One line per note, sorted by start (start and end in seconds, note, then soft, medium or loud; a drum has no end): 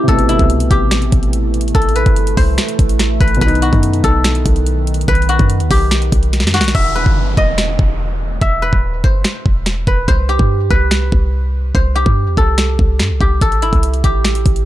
0.00 3.35 C3 medium
0.00 3.37 E3 medium
0.00 0.70 G4 medium
0.00 0.39 C5 medium
0.08 0.30 A1 loud
0.08 3.38 A3 medium
0.08 1.74 A4 medium
0.08 kick loud
0.08 closed hi-hat medium
0.13 3.35 B2 medium
0.19 closed hi-hat medium
0.29 0.39 G1 loud
0.29 2.90 E4 medium
0.29 closed hi-hat medium
0.39 0.69 C2 loud
0.39 kick medium
0.39 closed hi-hat soft
0.50 closed hi-hat medium
0.60 closed hi-hat medium
0.71 1.11 A1 loud
0.71 3.06 G4 medium
0.71 kick loud
0.71 closed hi-hat medium
0.91 finger snap medium
0.91 snare loud
0.91 closed hi-hat medium
1.02 closed hi-hat medium
1.12 1.72 A1 loud
1.12 kick loud
1.12 closed hi-hat medium
1.23 closed hi-hat medium
1.33 closed hi-hat medium
1.54 closed hi-hat medium
1.61 closed hi-hat medium
1.68 closed hi-hat medium
1.75 2.05 A1 loud
1.75 3.94 A4 medium
1.75 kick loud
1.75 closed hi-hat medium
1.82 closed hi-hat medium
1.89 closed hi-hat medium
1.96 2.43 B4 medium
1.96 closed hi-hat medium
2.06 2.36 G1 loud
2.06 kick medium
2.06 closed hi-hat soft
2.16 closed hi-hat medium
2.27 closed hi-hat medium
2.37 2.57 C2 loud
2.37 3.26 C5 medium
2.37 kick medium
2.37 open hi-hat medium
2.58 finger snap medium
2.58 snare loud
2.58 closed hi-hat medium
2.69 closed hi-hat medium
2.79 3.19 A1 loud
2.79 kick loud
2.79 closed hi-hat medium
2.89 closed hi-hat medium
2.99 finger snap medium
2.99 snare medium
2.99 closed hi-hat medium
3.20 3.41 A1 loud
3.20 3.41 B4 medium
3.20 kick loud
3.20 closed hi-hat medium
3.28 closed hi-hat soft
3.35 6.68 B2 medium
3.35 closed hi-hat medium
3.41 3.71 B1 loud
3.41 6.71 D#3 medium
3.41 5.08 B4 loud
3.41 kick loud
3.41 closed hi-hat medium
3.46 6.73 D#4 medium
3.46 closed hi-hat medium
3.55 closed hi-hat medium
3.62 5.29 F#4 medium
3.62 closed hi-hat medium
3.73 4.03 F#2 loud
3.73 kick medium
3.73 closed hi-hat soft
3.83 closed hi-hat medium
3.93 closed hi-hat medium
4.04 4.44 B1 loud
4.04 6.23 A4 medium
4.04 kick medium
4.04 closed hi-hat medium
4.24 finger snap medium
4.24 snare loud
4.24 closed hi-hat medium
4.35 closed hi-hat medium
4.46 5.06 B1 loud
4.46 kick loud
4.46 closed hi-hat medium
4.56 closed hi-hat medium
4.66 closed hi-hat medium
4.87 closed hi-hat medium
4.94 closed hi-hat medium
5.01 closed hi-hat soft
5.08 5.38 B1 loud
5.08 6.95 B4 medium
5.08 kick loud
5.08 closed hi-hat medium
5.15 closed hi-hat medium
5.22 closed hi-hat medium
5.29 5.77 F#4 medium
5.29 closed hi-hat medium
5.39 5.62 F#2 loud
5.39 kick loud
5.39 closed hi-hat soft
5.50 closed hi-hat medium
5.60 5.70 D#2 loud
5.60 closed hi-hat medium
5.71 6.11 B1 loud
5.71 6.60 G4 medium
5.71 kick medium
5.71 open hi-hat medium
5.91 finger snap medium
5.91 snare loud
5.91 closed hi-hat medium
6.02 closed hi-hat medium
6.12 6.45 B1 loud
6.12 kick loud
6.12 closed hi-hat medium
6.23 closed hi-hat medium
6.33 snare medium
6.33 closed hi-hat medium
6.40 6.61 F#2 loud
6.40 snare medium
6.47 snare medium
6.54 8.98 F#4 medium
6.54 snare medium
6.54 closed hi-hat medium
6.59 6.74 B1 loud
6.59 snare loud
6.64 snare loud
6.64 closed hi-hat medium
6.75 6.97 E1 loud
6.75 7.43 E5 medium
6.75 kick loud
6.75 crash loud
6.75 downlifter medium
6.95 7.05 D#1 loud
6.95 8.62 B4 medium
7.06 7.36 G1 loud
7.06 kick medium
7.37 7.77 E1 loud
7.37 8.47 D#5 medium
7.37 kick medium
7.58 finger snap medium
7.58 snare loud
7.79 8.39 E1 loud
7.79 kick loud
8.41 8.71 E1 loud
8.41 10.14 E5 medium
8.41 kick loud
8.62 9.10 B4 medium
8.73 9.03 D#1 loud
8.73 kick loud
9.04 9.24 G1 loud
9.04 9.93 C5 medium
9.04 kick medium
9.24 finger snap medium
9.24 snare loud
9.46 9.86 E1 loud
9.46 kick loud
9.66 finger snap medium
9.66 snare loud
9.87 10.07 E1 loud
9.87 10.14 B4 medium
9.87 kick loud
10.08 10.38 C2 loud
10.08 10.76 C5 loud
10.08 kick loud
10.29 11.95 G4 medium
10.39 10.69 G2 loud
10.39 kick medium
10.70 11.11 C2 loud
10.70 11.81 B4 medium
10.70 kick medium
10.91 finger snap medium
10.91 snare loud
11.12 11.72 C2 loud
11.12 kick loud
11.75 12.05 C2 loud
11.75 13.73 C5 medium
11.75 kick loud
11.95 13.20 G4 medium
12.06 12.28 G2 loud
12.06 kick medium
12.27 12.37 E2 loud
12.37 12.77 C2 loud
12.37 13.41 A4 medium
12.37 kick medium
12.58 finger snap medium
12.58 snare loud
12.79 13.01 C2 loud
12.79 kick medium
12.99 13.12 G2 loud
12.99 finger snap medium
12.99 snare medium
13.10 13.20 C2 loud
13.21 13.41 C2 loud
13.21 14.04 G4 medium
13.21 kick loud
13.41 13.64 A1 loud
13.41 14.65 A4 medium
13.41 kick loud
13.41 closed hi-hat medium
13.52 closed hi-hat medium
13.62 13.72 G1 loud
13.62 14.65 E4 medium
13.62 closed hi-hat medium
13.73 14.03 C2 loud
13.73 kick medium
13.73 closed hi-hat medium
13.83 closed hi-hat medium
13.94 closed hi-hat medium
14.04 14.44 A1 loud
14.04 14.65 G4 medium
14.04 kick medium
14.04 closed hi-hat medium
14.25 finger snap medium
14.25 snare loud
14.25 closed hi-hat medium
14.35 closed hi-hat medium
14.46 14.65 A1 loud
14.46 kick loud
14.46 closed hi-hat medium
14.56 closed hi-hat medium